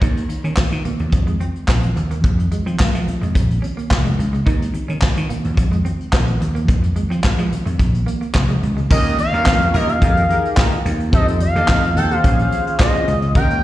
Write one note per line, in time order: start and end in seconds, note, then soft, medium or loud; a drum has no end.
0.01 0.23 D#2 loud
0.01 0.14 D#4 medium
0.01 kick loud
0.01 closed hi-hat medium
0.01 muted conga soft
0.17 closed hi-hat medium
0.29 muted clean electric guitar stroke soft
0.29 closed hi-hat medium
0.29 high conga medium
0.44 0.54 D#3 medium
0.44 0.55 C#4 medium
0.44 closed hi-hat soft
0.57 kick loud
0.57 snare loud
0.57 clap medium
0.57 muted conga soft
0.72 0.82 D#3 loud
0.72 closed hi-hat medium
0.85 0.97 A#3 medium
0.85 closed hi-hat medium
0.85 muted conga soft
0.85 high conga medium
0.85 low conga medium
0.99 1.10 D#2 medium
0.99 closed hi-hat medium
0.99 low conga medium
1.12 1.34 F2 loud
1.12 muted clean electric guitar stroke soft
1.12 kick loud
1.12 closed hi-hat medium
1.12 high conga medium
1.27 1.38 G#3 medium
1.27 closed hi-hat soft
1.40 1.53 C4 medium
1.40 closed hi-hat medium
1.40 high conga medium
1.55 closed hi-hat soft
1.68 1.89 A#1 medium
1.68 1.81 C4 medium
1.68 kick loud
1.68 snare loud
1.68 clap medium
1.68 muted conga soft
1.83 closed hi-hat soft
1.83 high conga medium
1.96 2.17 D#2 medium
1.96 muted clean electric guitar stroke soft
1.96 closed hi-hat medium
1.96 muted conga soft
1.96 low conga medium
2.11 2.22 A#3 medium
2.11 closed hi-hat medium
2.24 2.45 F2 medium
2.24 kick loud
2.24 closed hi-hat medium
2.39 muted clean electric guitar stroke soft
2.39 closed hi-hat medium
2.51 2.64 G#3 medium
2.51 closed hi-hat medium
2.51 muted conga soft
2.51 high conga medium
2.66 2.76 F3 medium
2.66 2.77 C4 medium
2.66 closed hi-hat soft
2.79 kick loud
2.79 snare loud
2.79 clap medium
2.79 muted conga soft
2.94 3.04 F3 loud
2.94 3.05 A3 medium
2.94 closed hi-hat medium
3.07 muted clean electric guitar stroke soft
3.07 closed hi-hat medium
3.07 muted conga soft
3.07 high conga medium
3.07 low conga medium
3.22 3.32 F2 medium
3.22 3.33 G#3 medium
3.22 closed hi-hat medium
3.22 low conga medium
3.35 3.56 A#1 loud
3.35 muted clean electric guitar stroke soft
3.35 kick loud
3.35 closed hi-hat medium
3.35 muted conga soft
3.35 high conga medium
3.50 closed hi-hat soft
3.62 3.75 C#4 medium
3.62 closed hi-hat medium
3.62 muted conga soft
3.62 high conga medium
3.77 3.88 A#3 medium
3.77 closed hi-hat soft
3.91 4.12 F1 medium
3.91 kick loud
3.91 snare loud
3.91 clap medium
4.05 4.16 G#3 medium
4.05 closed hi-hat soft
4.05 high conga medium
4.18 4.40 C#2 medium
4.18 muted clean electric guitar stroke soft
4.18 closed hi-hat medium
4.18 muted conga soft
4.18 low conga medium
4.33 4.44 G#3 medium
4.33 closed hi-hat soft
4.46 4.68 D#2 loud
4.46 4.58 D#4 medium
4.46 kick loud
4.46 closed hi-hat medium
4.62 closed hi-hat medium
4.74 muted clean electric guitar stroke soft
4.74 closed hi-hat medium
4.74 muted conga soft
4.74 high conga medium
4.88 4.99 D#3 medium
4.88 4.99 C#4 medium
4.88 closed hi-hat soft
5.02 muted slap bass stroke soft
5.02 kick loud
5.02 snare loud
5.02 clap medium
5.02 muted conga soft
5.17 5.27 D#3 medium
5.17 closed hi-hat medium
5.29 5.42 A#3 medium
5.29 closed hi-hat medium
5.29 muted conga soft
5.29 high conga medium
5.29 low conga medium
5.44 5.55 D#2 medium
5.44 closed hi-hat medium
5.44 low conga medium
5.57 5.78 F2 loud
5.57 muted clean electric guitar stroke soft
5.57 kick loud
5.57 closed hi-hat medium
5.57 muted conga soft
5.57 high conga medium
5.72 5.83 G#3 medium
5.72 closed hi-hat soft
5.84 5.97 C4 medium
5.84 closed hi-hat medium
5.84 muted conga soft
5.84 high conga medium
6.00 closed hi-hat soft
6.13 6.34 A#1 medium
6.13 6.25 C4 medium
6.13 kick loud
6.13 snare loud
6.13 clap medium
6.28 closed hi-hat soft
6.28 high conga medium
6.40 6.62 D#2 medium
6.40 muted clean electric guitar stroke soft
6.40 closed hi-hat medium
6.40 muted conga soft
6.40 low conga medium
6.55 6.66 A#3 medium
6.55 closed hi-hat soft
6.68 6.89 F2 medium
6.68 kick loud
6.68 closed hi-hat medium
6.68 muted conga soft
6.83 muted clean electric guitar stroke soft
6.83 closed hi-hat medium
6.96 7.08 G#3 medium
6.96 closed hi-hat medium
6.96 high conga medium
7.10 7.21 F3 medium
7.10 7.21 C4 medium
7.10 closed hi-hat soft
7.23 kick loud
7.23 snare loud
7.23 clap medium
7.23 muted conga soft
7.23 high conga soft
7.38 7.48 F3 loud
7.38 7.49 G#3 medium
7.38 closed hi-hat medium
7.51 muted clean electric guitar stroke soft
7.51 closed hi-hat medium
7.51 muted conga soft
7.51 high conga medium
7.51 low conga medium
7.66 7.76 F2 medium
7.66 7.77 A3 medium
7.66 closed hi-hat medium
7.66 low conga medium
7.79 8.01 A#1 loud
7.79 muted clean electric guitar stroke soft
7.79 kick loud
7.79 closed hi-hat medium
7.79 muted conga soft
7.79 high conga medium
7.94 closed hi-hat soft
8.06 8.19 A#3 medium
8.06 closed hi-hat medium
8.06 muted conga soft
8.06 high conga medium
8.21 8.32 A#3 medium
8.21 closed hi-hat soft
8.35 8.56 F1 medium
8.35 kick loud
8.35 snare loud
8.35 clap medium
8.49 8.60 G#3 medium
8.49 closed hi-hat soft
8.49 high conga medium
8.62 8.84 C#2 medium
8.62 muted clean electric guitar stroke soft
8.62 closed hi-hat medium
8.62 low conga medium
8.77 8.88 G#3 medium
8.77 closed hi-hat soft
8.90 9.23 D#2 loud
8.90 9.14 C#4 medium
8.90 9.03 F4 medium
8.90 9.14 F4 medium
8.90 9.03 G4 medium
8.90 9.14 G4 medium
8.90 9.03 A#4 loud
8.90 9.15 A#4 medium
8.90 9.17 D#5 loud
8.90 kick loud
8.90 crash loud
8.90 muted conga soft
9.06 closed hi-hat medium
9.18 9.77 F5 loud
9.18 closed hi-hat medium
9.18 muted conga soft
9.18 high conga medium
9.33 9.43 D#2 medium
9.33 9.88 C#4 medium
9.33 9.88 F4 medium
9.33 9.88 G4 medium
9.33 9.88 A#4 medium
9.33 closed hi-hat medium
9.45 9.68 F2 loud
9.45 kick loud
9.45 snare loud
9.45 clap loud
9.45 muted conga soft
9.45 high conga medium
9.61 closed hi-hat medium
9.74 9.95 D#2 medium
9.74 9.92 F4 medium
9.74 9.92 G4 loud
9.74 9.92 A#4 loud
9.74 9.91 D#5 loud
9.74 closed hi-hat medium
9.74 high conga medium
9.74 low conga medium
9.89 10.85 F5 loud
9.89 closed hi-hat medium
9.89 low conga medium
10.01 10.23 F2 medium
10.01 10.24 D#4 medium
10.01 10.24 G4 medium
10.01 10.25 G#4 medium
10.01 10.25 A#4 medium
10.01 kick loud
10.01 closed hi-hat medium
10.01 muted conga soft
10.01 high conga medium
10.17 closed hi-hat medium
10.29 10.77 D#4 medium
10.29 10.77 G4 medium
10.29 10.77 G#4 medium
10.29 10.77 A#4 medium
10.29 closed hi-hat medium
10.29 muted conga soft
10.29 high conga medium
10.45 closed hi-hat soft
10.57 kick loud
10.57 snare loud
10.57 clap loud
10.72 closed hi-hat soft
10.72 high conga medium
10.85 11.13 D#2 loud
10.85 closed hi-hat medium
10.85 muted conga soft
10.85 low conga medium
11.00 closed hi-hat medium
11.13 11.45 F2 loud
11.13 11.26 C4 medium
11.13 11.37 D#4 medium
11.13 11.26 D#4 medium
11.13 11.37 G4 medium
11.13 11.37 A4 medium
11.13 11.26 A4 loud
11.13 11.37 C5 medium
11.13 11.26 D#5 medium
11.13 kick loud
11.13 closed hi-hat medium
11.13 muted conga soft
11.28 closed hi-hat medium
11.40 11.99 F5 loud
11.40 closed hi-hat medium
11.40 high conga medium
11.55 11.69 D#2 medium
11.55 11.86 D#4 medium
11.55 11.87 G4 medium
11.55 11.87 A4 medium
11.55 11.87 D#5 medium
11.55 closed hi-hat medium
11.68 11.96 F2 medium
11.68 kick loud
11.68 snare loud
11.68 clap loud
11.68 high conga medium
11.83 closed hi-hat medium
11.96 12.17 D#2 loud
11.96 12.14 C4 loud
11.96 12.14 D#4 medium
11.96 12.14 A4 loud
11.96 12.13 G5 loud
11.96 closed hi-hat medium
11.96 muted conga soft
11.96 high conga medium
11.96 low conga medium
12.10 12.24 D#4 medium
12.10 12.24 G4 medium
12.10 12.24 A4 medium
12.10 12.23 C5 medium
12.10 12.80 F5 loud
12.10 closed hi-hat medium
12.10 low conga medium
12.23 12.45 A#1 loud
12.23 13.13 C#4 medium
12.23 13.13 F4 medium
12.23 13.13 G#4 medium
12.23 13.13 C5 medium
12.23 kick loud
12.23 closed hi-hat medium
12.23 muted conga soft
12.23 high conga medium
12.39 closed hi-hat medium
12.51 closed hi-hat medium
12.51 muted conga soft
12.51 high conga medium
12.67 closed hi-hat soft
12.79 13.32 D#5 loud
12.79 kick loud
12.79 snare loud
12.79 clap loud
12.79 muted conga soft
12.94 closed hi-hat soft
12.94 high conga medium
13.08 13.35 C#2 medium
13.08 closed hi-hat medium
13.08 muted conga soft
13.08 low conga medium
13.22 closed hi-hat medium
13.35 13.64 D#2 loud
13.35 13.59 C#4 medium
13.35 13.47 F4 medium
13.35 13.59 F4 medium
13.35 13.47 G4 medium
13.35 13.59 G4 medium
13.35 13.47 A#4 loud
13.35 13.59 A#4 medium
13.35 13.64 G5 loud
13.35 kick loud
13.35 closed hi-hat medium
13.50 closed hi-hat medium